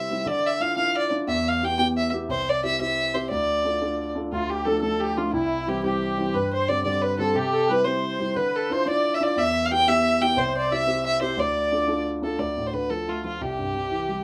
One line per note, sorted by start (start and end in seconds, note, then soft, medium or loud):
0.00 0.23 C3 medium
0.00 0.29 E5 medium
0.10 0.26 G3 soft
0.10 0.26 C4 soft
0.10 0.26 E4 medium
0.26 1.24 D3 medium
0.26 0.48 D5 loud
0.46 0.63 E5 medium
0.60 0.75 D4 soft
0.60 0.76 E4 soft
0.60 0.76 F4 soft
0.60 0.76 F5 medium
0.77 1.09 D4 soft
0.77 1.10 E4 soft
0.77 1.11 F4 soft
0.77 0.94 F5 medium
0.97 1.11 D5 medium
1.11 1.27 D4 soft
1.11 1.27 E4 soft
1.11 1.28 F4 soft
1.27 2.26 E2 medium
1.27 1.50 E5 medium
1.48 1.66 F5 medium
1.62 1.77 B3 soft
1.62 1.77 E4 soft
1.62 1.77 G4 soft
1.62 1.78 G5 loud
1.78 2.11 B3 medium
1.78 2.12 E4 soft
1.78 2.12 G4 medium
1.78 1.87 G5 medium
1.97 2.12 E5 medium
2.13 2.28 B3 soft
2.13 2.29 E4 soft
2.13 2.29 G4 medium
2.29 3.27 C2 medium
2.29 2.51 C5 loud
2.49 2.64 D5 medium
2.63 2.78 C4 soft
2.63 2.78 E4 soft
2.63 2.79 G4 medium
2.63 2.79 E5 loud
2.80 3.12 C4 soft
2.80 3.13 E4 soft
2.80 3.13 G4 medium
2.80 3.16 E5 loud
3.14 3.30 C4 soft
3.14 3.30 E4 soft
3.14 3.30 G4 medium
3.14 3.30 C5 medium
3.30 4.29 D2 medium
3.30 4.12 D5 medium
3.65 3.80 D4 soft
3.65 3.80 F4 soft
3.65 3.81 A4 soft
3.82 4.14 D4 soft
3.82 4.14 F4 soft
3.82 4.15 A4 soft
4.15 4.31 D4 soft
4.15 4.31 F4 soft
4.15 4.32 A4 soft
4.32 5.30 D2 medium
4.32 4.52 F4 medium
4.32 4.51 F4 medium
4.50 4.67 G4 medium
4.50 4.66 G4 medium
4.65 4.80 F3 soft
4.65 4.81 A3 soft
4.65 4.81 D4 soft
4.65 4.81 A4 medium
4.82 5.15 F3 soft
4.82 5.16 A3 soft
4.82 5.16 D4 soft
4.82 5.02 A4 medium
4.82 5.01 A4 medium
5.00 5.19 G4 medium
5.00 5.18 G4 medium
5.17 5.32 F3 soft
5.17 5.33 A3 soft
5.17 5.33 D4 soft
5.17 5.32 F4 medium
5.31 6.31 C2 medium
5.31 5.84 E4 medium
5.31 5.70 E4 medium
5.67 5.82 E3 soft
5.67 5.83 G3 soft
5.67 5.83 C4 soft
5.67 5.83 G4 medium
5.83 6.16 E3 soft
5.83 6.16 G3 soft
5.83 6.17 C4 medium
5.83 6.36 G4 medium
5.83 6.35 G4 medium
6.17 6.33 E3 soft
6.17 6.34 G3 soft
6.17 6.34 C4 medium
6.34 7.32 G2 medium
6.34 6.53 B4 medium
6.34 6.54 B4 medium
6.53 6.68 C5 medium
6.53 6.70 C5 medium
6.69 6.83 D3 soft
6.69 6.84 G3 soft
6.69 6.84 C4 medium
6.69 6.84 D5 medium
6.69 6.82 D5 medium
6.83 7.17 D3 soft
6.83 7.18 G3 soft
6.83 7.18 C4 medium
6.83 7.03 D5 medium
7.02 7.18 B4 medium
7.02 7.20 B4 medium
7.19 7.34 D3 soft
7.19 7.35 G3 soft
7.19 7.35 C4 medium
7.19 7.36 A4 medium
7.19 7.38 A4 medium
7.34 8.33 C3 medium
7.34 7.54 G4 medium
7.34 7.73 G4 medium
7.52 7.68 A4 medium
7.68 7.84 G3 soft
7.68 7.84 C4 soft
7.68 7.85 E4 soft
7.68 7.85 B4 medium
7.68 7.86 B4 loud
7.84 8.18 G3 soft
7.84 8.18 C4 soft
7.84 8.19 E4 medium
7.84 8.37 C5 medium
7.84 8.38 C5 medium
8.20 8.35 G3 soft
8.20 8.35 C4 soft
8.20 8.36 E4 medium
8.35 9.34 D3 medium
8.35 8.71 B4 medium
8.35 8.58 B4 medium
8.56 8.74 A4 medium
8.70 8.84 D4 soft
8.70 8.85 E4 soft
8.70 8.85 F4 soft
8.70 8.87 C5 medium
8.86 9.19 D4 soft
8.86 9.19 E4 soft
8.86 9.20 F4 medium
8.86 9.15 D5 medium
8.86 9.16 D5 medium
9.14 9.22 E5 medium
9.14 9.24 E5 medium
9.21 9.36 D4 soft
9.21 9.36 E4 soft
9.21 9.37 F4 medium
9.21 9.37 D5 medium
9.21 9.40 D5 medium
9.36 10.34 E2 medium
9.36 9.62 E5 medium
9.36 9.67 E5 loud
9.64 9.72 F5 medium
9.64 9.73 F5 medium
9.71 9.86 B3 soft
9.71 9.86 E4 soft
9.71 9.86 G4 soft
9.71 9.90 G5 loud
9.71 9.88 G5 medium
9.87 10.19 B3 soft
9.87 10.19 E4 soft
9.87 10.20 G4 medium
9.87 10.23 E5 medium
9.87 10.23 E5 loud
10.21 10.37 B3 soft
10.21 10.37 E4 soft
10.21 10.37 G4 medium
10.21 10.40 G5 loud
10.21 10.38 G5 medium
10.37 11.35 C2 medium
10.37 10.69 C5 loud
10.37 10.57 C5 medium
10.57 10.74 D5 medium
10.71 10.85 C4 soft
10.71 10.86 E4 soft
10.71 10.86 G4 soft
10.71 11.03 E5 medium
10.71 11.06 E5 loud
10.87 11.20 C4 medium
10.87 11.20 E4 soft
10.87 11.20 G4 medium
11.05 11.22 E5 medium
11.05 11.21 E5 medium
11.21 11.37 C4 soft
11.21 11.37 E4 soft
11.21 11.38 G4 medium
11.21 11.39 C5 medium
11.21 11.41 C5 medium
11.37 12.35 D2 medium
11.37 12.03 D5 medium
11.37 12.08 D5 medium
11.72 11.86 D4 soft
11.72 11.86 F4 soft
11.72 11.87 A4 soft
11.88 12.21 D4 soft
11.88 12.22 F4 soft
11.88 12.22 A4 soft
12.22 12.38 D4 soft
12.22 12.39 F4 soft
12.22 12.39 A4 medium
12.22 12.41 A4 medium
12.39 13.36 D2 medium
12.39 12.68 D5 medium
12.57 12.73 A2 soft
12.67 12.76 C5 medium
12.74 12.89 D3 soft
12.74 12.92 B4 medium
12.90 13.08 F3 soft
12.90 13.11 A4 medium
13.08 13.23 A3 soft
13.08 13.24 F4 medium
13.24 13.39 F3 medium
13.24 13.43 F4 medium
13.41 14.24 C2 medium
13.41 14.24 G4 medium
13.59 13.74 G2 soft
13.75 13.90 C3 soft
13.91 14.08 E3 soft
14.09 14.24 G3 soft